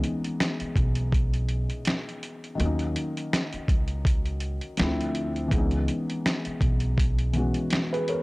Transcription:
0.00 2.53 E3 medium
0.00 2.54 G#3 medium
0.00 2.56 B3 medium
0.00 2.57 C#4 medium
0.00 2.58 D#4 medium
0.00 closed hi-hat medium
0.24 closed hi-hat soft
0.40 snare loud
0.40 closed hi-hat medium
0.60 muted upright bass stroke soft
0.60 closed hi-hat soft
0.76 1.66 B1 medium
0.76 kick medium
0.76 closed hi-hat medium
0.95 closed hi-hat medium
1.12 kick loud
1.12 closed hi-hat medium
1.34 closed hi-hat soft
1.49 closed hi-hat medium
1.70 closed hi-hat soft
1.85 snare loud
1.85 closed hi-hat medium
2.09 closed hi-hat soft
2.23 closed hi-hat medium
2.44 closed hi-hat soft
2.55 4.73 D#3 medium
2.55 4.74 F#3 medium
2.60 2.94 D#2 loud
2.60 4.75 A#3 medium
2.60 4.77 C#4 medium
2.60 closed hi-hat medium
2.65 4.78 D#4 medium
2.79 closed hi-hat soft
2.96 closed hi-hat medium
3.17 closed hi-hat medium
3.33 snare loud
3.33 closed hi-hat medium
3.53 muted upright bass stroke soft
3.53 closed hi-hat soft
3.68 4.59 C#2 medium
3.68 kick medium
3.68 closed hi-hat medium
3.88 closed hi-hat soft
4.05 kick loud
4.05 closed hi-hat medium
4.26 closed hi-hat soft
4.40 closed hi-hat medium
4.61 closed hi-hat soft
4.77 5.48 D2 loud
4.77 5.51 F3 medium
4.77 5.52 A3 medium
4.77 5.52 C4 medium
4.77 5.53 D4 medium
4.77 snare loud
4.77 closed hi-hat medium
4.82 5.54 E4 medium
5.01 closed hi-hat soft
5.15 closed hi-hat medium
5.36 closed hi-hat soft
5.48 5.86 C#2 loud
5.48 7.29 E3 medium
5.48 7.30 G#3 medium
5.48 kick loud
5.48 closed hi-hat medium
5.53 7.32 B3 medium
5.53 7.33 C#4 medium
5.58 7.34 D#4 medium
5.71 closed hi-hat soft
5.88 closed hi-hat medium
6.10 closed hi-hat soft
6.26 snare loud
6.26 closed hi-hat medium
6.45 muted upright bass stroke soft
6.45 closed hi-hat soft
6.61 7.51 B1 medium
6.61 kick medium
6.61 closed hi-hat medium
6.80 closed hi-hat soft
6.98 kick medium
6.98 closed hi-hat medium
7.19 closed hi-hat soft
7.33 8.23 E3 medium
7.33 8.23 G#3 medium
7.33 8.23 B3 soft
7.33 8.23 C#4 medium
7.33 closed hi-hat medium
7.38 8.23 F#4 medium
7.54 closed hi-hat soft
7.70 snare loud
7.70 closed hi-hat medium
7.93 8.08 G#4 medium
7.93 8.08 B4 medium
7.93 closed hi-hat soft
8.08 8.23 A#4 medium
8.08 8.23 C#5 medium
8.08 closed hi-hat medium

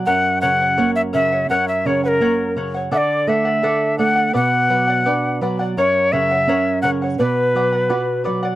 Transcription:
0.06 1.46 F#2 medium
0.06 0.41 A#4 medium
0.06 0.41 C#5 medium
0.06 0.39 F#5 loud
0.06 0.42 F#5 medium
0.41 0.77 C#3 soft
0.41 0.60 A#4 medium
0.41 0.60 C#5 medium
0.41 0.91 F#5 medium
0.41 0.59 F#5 medium
0.60 0.77 C#5 soft
0.60 0.78 F#5 soft
0.78 1.12 A#3 medium
0.78 1.12 A#4 medium
0.78 1.12 C#5 medium
0.78 1.13 F#5 medium
0.95 1.01 E5 medium
1.13 1.48 C#3 soft
1.13 1.31 A#4 medium
1.13 1.31 C#5 soft
1.13 1.47 E5 medium
1.13 1.31 F#5 medium
1.32 1.50 C#5 soft
1.32 1.49 F#5 soft
1.50 2.88 F#2 medium
1.50 1.84 A#4 medium
1.50 1.85 C#5 medium
1.50 1.66 F#5 loud
1.50 1.86 F#5 medium
1.68 1.88 E5 medium
1.85 2.19 C#3 soft
1.85 2.03 A#4 medium
1.85 2.03 C#5 medium
1.85 2.02 F#5 medium
2.04 2.09 B4 medium
2.04 2.20 C#5 soft
2.04 2.21 F#5 soft
2.08 2.53 A#4 medium
2.20 2.55 A#3 soft
2.20 2.55 A#4 medium
2.20 2.56 C#5 medium
2.20 2.56 F#5 medium
2.56 2.91 C#3 soft
2.56 2.74 A#4 medium
2.56 2.74 C#5 medium
2.56 2.73 F#5 medium
2.74 2.93 C#5 soft
2.74 2.91 F#5 soft
2.91 4.30 D3 medium
2.91 3.26 A4 medium
2.91 3.27 D5 medium
2.91 2.98 E5 medium
2.91 3.28 F#5 medium
2.97 3.30 D5 medium
3.27 3.62 A3 soft
3.27 3.45 A4 soft
3.27 3.45 D5 medium
3.27 3.98 E5 medium
3.27 3.44 F#5 medium
3.45 3.63 D5 soft
3.45 3.63 F#5 soft
3.63 3.98 A4 medium
3.63 3.97 A4 medium
3.63 3.98 D5 medium
3.63 3.99 F#5 medium
3.98 4.33 A3 soft
3.98 4.16 A4 soft
3.98 4.16 D5 medium
3.98 4.32 F#5 medium
3.98 4.14 F#5 medium
4.16 4.33 D5 soft
4.16 4.34 F#5 soft
4.33 5.73 B2 medium
4.33 4.68 B4 medium
4.33 4.69 D5 medium
4.33 4.70 F#5 medium
4.33 5.38 F#5 medium
4.69 5.04 F#3 soft
4.69 4.88 B4 medium
4.69 4.88 D5 medium
4.69 4.86 F#5 medium
4.88 5.05 D5 soft
4.88 5.06 F#5 soft
5.06 5.41 D4 medium
5.06 5.40 B4 medium
5.06 5.41 D5 medium
5.06 5.42 F#5 medium
5.41 5.76 F#3 soft
5.41 5.59 B4 medium
5.41 5.59 D5 medium
5.41 5.58 F#5 medium
5.59 5.78 D5 soft
5.59 5.77 F#5 soft
5.77 7.15 F#2 medium
5.77 6.11 A#4 medium
5.77 6.14 C#5 medium
5.77 6.12 C#5 medium
5.77 6.13 F#5 medium
6.12 6.47 C#3 soft
6.12 6.30 A#4 medium
6.12 6.31 C#5 medium
6.12 6.81 E5 medium
6.12 6.30 F#5 medium
6.31 6.48 C#5 soft
6.31 6.48 F#5 soft
6.47 6.82 C#4 medium
6.47 6.83 A#4 medium
6.47 6.83 C#5 medium
6.47 6.84 F#5 medium
6.82 7.18 C#3 soft
6.82 7.02 A#4 soft
6.82 7.02 C#5 medium
6.82 6.90 F#5 medium
6.82 7.01 F#5 medium
7.02 7.20 C#5 soft
7.02 7.19 F#5 soft
7.18 8.55 B2 medium
7.18 8.22 B4 medium
7.18 7.54 B4 medium
7.18 7.55 D5 medium
7.18 7.55 F#5 medium
7.55 7.89 F#3 soft
7.55 7.73 B4 soft
7.55 7.73 D5 medium
7.55 7.71 F#5 medium
7.72 7.89 D5 soft
7.72 7.89 F#5 soft
7.89 8.25 F#4 soft
7.89 8.23 B4 medium
7.89 8.24 D5 medium
7.89 8.24 F#5 medium
8.24 8.55 F#3 soft
8.24 8.43 B4 medium
8.24 8.43 D5 medium
8.24 8.41 F#5 medium
8.43 8.55 D5 soft
8.43 8.55 F#5 soft

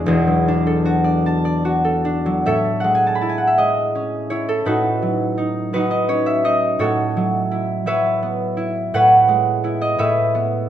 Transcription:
0.00 0.10 G#3 medium
0.00 0.47 D4 medium
0.00 0.86 E4 medium
0.00 0.11 G#4 medium
0.00 0.11 C#5 medium
0.00 1.03 D5 medium
0.00 1.41 E5 medium
0.00 0.11 C#6 medium
0.06 2.48 E1 medium
0.06 2.49 E2 medium
0.27 2.24 F#3 medium
0.48 2.04 D4 medium
0.67 1.83 A4 medium
0.85 1.64 F#4 medium
1.04 1.44 D5 medium
1.26 3.05 A5 medium
1.45 2.48 D5 medium
1.65 2.48 F#4 medium
1.84 2.46 A4 medium
2.05 2.48 D4 medium
2.26 2.48 F#3 medium
2.46 4.64 A2 medium
2.46 4.47 A4 medium
2.46 4.29 C#5 medium
2.46 3.46 E5 medium
2.80 3.57 G#3 medium
2.80 3.04 F#5 medium
2.95 3.12 G#5 medium
3.07 3.20 A5 medium
3.15 3.27 B5 medium
3.21 4.30 E4 medium
3.21 3.34 A5 medium
3.29 3.43 G#5 medium
3.38 3.54 F#5 medium
3.47 3.65 E5 medium
3.58 4.70 G#3 medium
3.58 4.81 D#5 medium
3.95 6.07 C#4 medium
4.30 4.70 E4 medium
4.30 6.07 C#5 medium
4.49 4.79 A4 medium
4.65 6.78 A2 medium
4.65 5.36 D#4 medium
4.65 5.73 F#4 medium
4.65 5.72 B4 medium
5.02 5.72 F#3 medium
5.38 5.74 D#4 medium
5.73 7.15 F#3 medium
5.73 6.43 D#4 medium
5.73 6.80 F#4 medium
5.73 7.86 B4 medium
5.91 6.21 D#5 medium
6.08 9.98 C#4 medium
6.08 6.79 C#5 medium
6.26 6.56 E5 medium
6.44 6.82 D#4 medium
6.44 6.82 D#5 medium
6.79 8.93 A2 medium
6.79 10.00 F#4 medium
6.79 10.00 A4 medium
6.79 7.86 C#5 medium
7.17 7.85 F#3 medium
7.51 8.56 E4 medium
7.86 9.99 F#3 medium
7.86 8.94 B4 medium
7.86 8.94 C#5 medium
7.86 9.98 E5 medium
8.23 9.63 B3 medium
8.57 9.63 E4 medium
8.94 9.97 A2 medium
8.94 9.98 B4 medium
8.94 9.98 C#5 medium
8.94 10.00 F#5 medium
9.28 10.69 G#3 medium
9.64 10.34 B3 soft
9.64 10.68 E4 medium
9.81 10.10 D#5 medium
9.98 10.69 A2 medium
9.98 10.69 B4 medium
9.98 10.69 C#5 medium
9.98 10.69 E5 medium
10.35 10.69 B3 medium

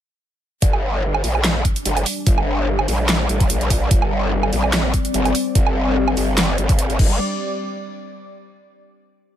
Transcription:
0.62 1.22 G1 loud
0.62 6.95 G3 medium
0.62 3.88 D4 medium
0.62 6.95 D5 medium
0.62 kick loud
0.62 closed hi-hat medium
0.73 low woodblock medium
1.14 low woodblock medium
1.24 1.63 A#1 loud
1.24 open hi-hat medium
1.35 low woodblock medium
1.44 snare loud
1.44 clap medium
1.44 closed hi-hat medium
1.65 kick medium
1.65 closed hi-hat medium
1.76 closed hi-hat medium
1.85 2.05 G1 loud
1.85 closed hi-hat medium
1.97 closed hi-hat soft
1.97 low woodblock medium
2.06 open hi-hat medium
2.27 2.87 G1 medium
2.27 kick loud
2.27 closed hi-hat medium
2.38 low woodblock medium
2.79 low woodblock medium
2.88 3.28 A#1 loud
2.88 open hi-hat medium
3.09 snare loud
3.09 clap medium
3.09 closed hi-hat medium
3.29 3.48 A1 medium
3.29 closed hi-hat medium
3.40 kick loud
3.40 closed hi-hat medium
3.50 3.89 A#1 loud
3.50 closed hi-hat medium
3.61 closed hi-hat soft
3.70 kick medium
3.70 open hi-hat medium
3.91 4.51 G1 loud
3.91 6.96 C4 medium
3.91 kick loud
3.91 closed hi-hat medium
4.02 low woodblock medium
4.43 low woodblock medium
4.53 4.92 A#1 loud
4.53 open hi-hat medium
4.64 low woodblock medium
4.73 snare loud
4.73 clap medium
4.73 closed hi-hat medium
4.94 kick medium
4.94 closed hi-hat medium
5.05 closed hi-hat medium
5.14 5.33 G1 loud
5.14 closed hi-hat medium
5.25 closed hi-hat soft
5.25 low woodblock medium
5.35 open hi-hat medium
5.55 6.15 G1 loud
5.55 kick loud
5.55 closed hi-hat medium
5.67 low woodblock medium
6.08 low woodblock medium
6.17 6.57 G1 loud
6.17 open hi-hat medium
6.38 snare loud
6.38 clap medium
6.38 closed hi-hat medium
6.58 6.98 G1 medium
6.58 closed hi-hat medium
6.69 kick loud
6.69 closed hi-hat medium
6.79 closed hi-hat medium
6.90 closed hi-hat soft
6.99 7.18 G1 loud
6.99 kick loud
6.99 crash medium

